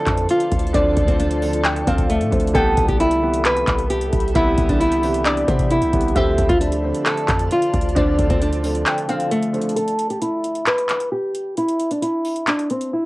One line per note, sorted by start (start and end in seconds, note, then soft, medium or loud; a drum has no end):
0.00 0.73 D3 loud
0.00 0.74 F3 medium
0.00 0.74 A3 medium
0.00 0.75 C4 loud
0.00 2.51 F4 medium
0.00 0.27 A4 medium
0.00 9.73 A4 medium
0.00 2.51 D5 medium
0.00 0.25 E5 loud
0.00 2.51 A5 medium
0.07 0.28 F2 loud
0.07 kick medium
0.07 clap medium
0.07 closed hi-hat medium
0.18 closed hi-hat medium
0.29 0.72 F4 medium
0.29 closed hi-hat medium
0.40 closed hi-hat medium
0.52 0.74 D2 loud
0.52 kick loud
0.52 closed hi-hat medium
0.59 closed hi-hat medium
0.67 closed hi-hat soft
0.73 0.96 D2 loud
0.73 1.16 D3 loud
0.73 1.16 F3 medium
0.73 1.17 A3 medium
0.73 1.17 C4 loud
0.73 1.06 D4 loud
0.73 1.61 D5 loud
0.73 kick loud
0.73 closed hi-hat medium
0.97 1.84 D2 loud
0.97 kick loud
0.97 closed hi-hat medium
1.08 1.18 C4 medium
1.08 kick loud
1.08 closed hi-hat medium
1.20 1.83 D4 medium
1.20 closed hi-hat medium
1.31 closed hi-hat medium
1.41 1.70 D3 medium
1.41 1.70 F3 medium
1.41 1.71 A3 medium
1.41 1.71 C4 medium
1.41 open hi-hat medium
1.53 closed hi-hat medium
1.65 1.86 G5 medium
1.65 clap loud
1.65 closed hi-hat medium
1.76 closed hi-hat medium
1.86 2.23 D2 loud
1.86 2.15 D3 medium
1.86 2.15 F3 medium
1.86 2.15 A3 medium
1.86 2.07 C4 medium
1.86 2.16 C4 medium
1.86 2.51 F5 medium
1.86 kick medium
1.86 closed hi-hat medium
1.98 kick medium
1.98 closed hi-hat medium
2.10 2.52 A3 medium
2.10 closed hi-hat medium
2.21 2.32 A2 loud
2.21 closed hi-hat medium
2.31 2.54 D2 loud
2.31 2.46 D3 medium
2.31 2.46 F3 medium
2.31 2.46 A3 medium
2.31 2.47 C4 medium
2.31 kick loud
2.31 closed hi-hat soft
2.40 closed hi-hat medium
2.47 closed hi-hat medium
2.53 2.77 C2 loud
2.53 2.75 C3 medium
2.53 2.76 E3 medium
2.53 2.76 G3 loud
2.53 2.76 B3 loud
2.53 6.12 G4 medium
2.53 2.87 A4 loud
2.53 6.12 E5 medium
2.53 3.86 G5 loud
2.53 6.12 B5 medium
2.53 kick loud
2.53 closed hi-hat medium
2.77 3.64 C2 loud
2.77 kick loud
2.77 closed hi-hat medium
2.87 3.09 C3 medium
2.87 3.09 E3 medium
2.87 3.10 G3 medium
2.87 3.10 B3 medium
2.87 2.99 G4 medium
2.87 kick loud
2.87 closed hi-hat medium
3.00 3.42 E4 medium
3.00 closed hi-hat medium
3.11 closed hi-hat medium
3.21 3.78 C3 medium
3.21 3.79 E3 medium
3.21 3.79 G3 medium
3.21 3.79 B3 medium
3.34 closed hi-hat medium
3.45 3.88 B4 medium
3.45 clap loud
3.45 closed hi-hat medium
3.57 closed hi-hat medium
3.68 4.11 C2 loud
3.68 kick medium
3.68 clap medium
3.68 closed hi-hat medium
3.79 closed hi-hat medium
3.90 4.33 G4 medium
3.90 closed hi-hat medium
4.01 closed hi-hat medium
4.13 4.34 C2 loud
4.13 kick loud
4.13 closed hi-hat medium
4.20 closed hi-hat medium
4.28 closed hi-hat soft
4.34 4.57 C2 loud
4.34 4.77 C3 loud
4.34 4.77 E3 medium
4.34 4.78 G3 medium
4.34 4.78 B3 loud
4.34 4.67 E4 loud
4.34 5.22 E5 loud
4.34 kick loud
4.34 closed hi-hat medium
4.58 5.44 C2 loud
4.58 kick loud
4.58 closed hi-hat medium
4.69 4.79 D4 medium
4.69 kick loud
4.69 closed hi-hat medium
4.80 5.23 E4 medium
4.80 closed hi-hat medium
4.92 closed hi-hat medium
5.02 5.31 C3 medium
5.02 5.31 E3 medium
5.02 5.31 G3 medium
5.02 5.32 B3 medium
5.02 open hi-hat medium
5.14 closed hi-hat medium
5.25 5.46 D4 medium
5.25 5.68 D5 loud
5.25 clap loud
5.25 closed hi-hat medium
5.37 closed hi-hat medium
5.47 5.76 C3 medium
5.47 5.83 C3 loud
5.47 5.76 E3 medium
5.47 5.76 G3 medium
5.47 5.77 B3 medium
5.47 5.68 C4 medium
5.47 kick medium
5.47 closed hi-hat medium
5.59 kick loud
5.59 closed hi-hat medium
5.71 6.13 E4 medium
5.71 closed hi-hat medium
5.82 5.93 B1 loud
5.82 closed hi-hat medium
5.93 6.15 C2 loud
5.93 6.07 C3 medium
5.93 6.07 E3 medium
5.93 6.08 G3 medium
5.93 6.08 B3 medium
5.93 kick loud
5.93 closed hi-hat medium
6.01 closed hi-hat medium
6.08 closed hi-hat soft
6.15 6.37 D2 loud
6.15 6.37 D3 loud
6.15 6.37 F3 medium
6.15 6.37 A3 medium
6.15 6.38 C4 loud
6.15 9.73 F4 medium
6.15 6.48 G4 loud
6.15 9.73 D5 medium
6.15 7.47 E5 loud
6.15 9.73 A5 medium
6.15 kick loud
6.15 closed hi-hat medium
6.38 6.49 D2 loud
6.38 kick loud
6.38 closed hi-hat medium
6.49 6.93 D2 loud
6.49 6.70 D3 medium
6.49 6.71 F3 medium
6.49 6.71 A3 medium
6.49 6.71 C4 medium
6.49 6.59 F4 medium
6.49 kick loud
6.49 closed hi-hat medium
6.61 7.03 D4 medium
6.61 closed hi-hat medium
6.72 closed hi-hat medium
6.82 7.39 D3 medium
6.82 7.40 F3 medium
6.82 7.40 A3 medium
6.82 7.40 C4 medium
6.95 closed hi-hat medium
7.06 7.48 A4 medium
7.06 clap loud
7.06 closed hi-hat medium
7.18 closed hi-hat medium
7.28 7.50 F2 loud
7.28 kick medium
7.28 clap medium
7.28 closed hi-hat medium
7.39 closed hi-hat medium
7.51 7.94 F4 medium
7.51 closed hi-hat medium
7.62 closed hi-hat medium
7.74 7.95 D2 loud
7.74 kick loud
7.74 closed hi-hat medium
7.81 closed hi-hat medium
7.89 closed hi-hat soft
7.95 8.18 D2 loud
7.95 8.38 D3 loud
7.95 8.38 F3 medium
7.95 8.39 A3 medium
7.95 8.39 C4 loud
7.95 8.28 D4 loud
7.95 8.82 D5 loud
7.95 kick loud
7.95 closed hi-hat medium
8.19 8.30 D2 loud
8.19 kick loud
8.19 closed hi-hat medium
8.30 8.84 D2 loud
8.30 8.40 C4 medium
8.30 kick loud
8.30 closed hi-hat medium
8.42 9.05 D4 medium
8.42 closed hi-hat medium
8.53 closed hi-hat medium
8.63 8.92 D3 medium
8.63 8.92 F3 medium
8.63 8.92 A3 medium
8.63 8.93 C4 medium
8.63 open hi-hat medium
8.75 closed hi-hat medium
8.86 9.08 G5 medium
8.86 clap loud
8.86 closed hi-hat medium
8.98 closed hi-hat medium
9.08 9.37 D3 medium
9.08 9.37 F3 medium
9.08 9.37 A3 medium
9.08 9.29 C4 medium
9.08 9.38 C4 medium
9.08 9.73 F5 medium
9.08 closed hi-hat medium
9.20 closed hi-hat medium
9.31 9.74 A3 medium
9.31 closed hi-hat medium
9.43 closed hi-hat medium
9.53 9.67 D3 medium
9.53 9.68 F3 medium
9.53 9.68 A3 medium
9.53 9.69 C4 medium
9.53 closed hi-hat soft
9.62 closed hi-hat medium
9.69 closed hi-hat medium
9.76 10.08 A4 loud
9.76 closed hi-hat medium
9.88 closed hi-hat medium
9.99 closed hi-hat medium
10.10 10.20 G4 medium
10.10 closed hi-hat medium
10.22 10.64 E4 medium
10.22 closed hi-hat medium
10.44 closed hi-hat medium
10.55 closed hi-hat soft
10.67 11.09 B4 medium
10.67 clap loud
10.67 closed hi-hat medium
10.78 closed hi-hat medium
10.89 clap medium
10.89 closed hi-hat medium
11.00 closed hi-hat medium
11.12 11.54 G4 medium
11.35 closed hi-hat medium
11.57 11.89 E4 loud
11.57 closed hi-hat medium
11.68 closed hi-hat medium
11.79 closed hi-hat medium
11.91 12.01 D4 medium
11.91 closed hi-hat medium
12.02 12.44 E4 medium
12.02 closed hi-hat medium
12.25 open hi-hat medium
12.36 closed hi-hat medium
12.47 12.67 D4 medium
12.47 clap loud
12.47 closed hi-hat medium
12.59 closed hi-hat medium
12.70 12.90 C4 medium
12.70 closed hi-hat medium
12.81 closed hi-hat medium
12.93 13.06 E4 medium